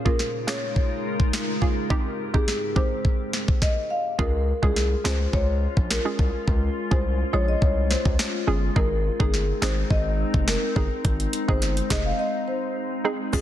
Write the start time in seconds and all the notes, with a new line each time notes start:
Already playing: C#3 G#3 D#4 F4 A#4
0.05 A#3 C#4 F4 G#4 A#4, kick
0.19 snare
0.47 A#3 C#4 F4 G#4 C#5, finger snap, snare
0.76 kick
1.20 kick
1.33 finger snap, snare
1.62 A#3 C#4 F4 G#4, kick
1.90 G#2 G#3 C4 D#4 G4, kick
2.34 G#3 C4 D#4 G4 G#4, kick
2.48 snare
2.76 G#3 C4 D#4 G4 C5, kick
3.05 kick
3.33 snare
3.48 kick
3.62 D#5, kick, snare
3.90 F5
4.19 C#2 G#3 C#4 F4 G#4 A#4, kick
4.62 C2 G#3 C#4 F4 G#4, kick
4.76 snare
5.04 C#2 G#3 C#4 F4 G#4, finger snap, snare
5.33 C#2 C#5, kick
5.77 A#1, kick
5.90 A#4, finger snap, snare
6.05 G#3 C#4 F4 G#4
6.19 C2, kick
6.48 C#2, kick
6.91 C2 G#3 C#4 F4 G#4 C5, kick
7.33 A#1 G#3 C#4 F4 G#4 C#5
7.48 D#5
7.62 C2 C#5, kick
7.90 C5, snare
8.05 C#2, kick
8.19 finger snap, snare
8.47 G1 G#3 C#4 F4 G#4
8.76 G#1 G#3 C4 D#4 G#4 A#4, kick
9.20 G1 G#3 C4 D#4 G#4, kick
9.34 snare
9.62 G#1 G#3 C4 D#4 G#4 C5, finger snap, snare
9.90 G#1 D#5, kick
10.34 F1, kick
10.48 A#4, finger snap, snare
10.76 G1 G#3 C4 D#4 G#4, kick
11.05 G#1, kick, closed hi-hat
11.20 closed hi-hat
11.33 closed hi-hat
11.48 G1 G#3 C4 D#4 G#4 C5, kick
11.62 snare, closed hi-hat
11.77 closed hi-hat
11.90 F1 G#3 C4 D#4 G#4 D#5, finger snap, kick, snare, closed hi-hat
12.06 F5
12.19 D#5
12.48 C5
13.04 G#3 C4 D#4 G#4
13.33 C#2 F3 G#3 C#4 F4 G#4, kick, crash, shaker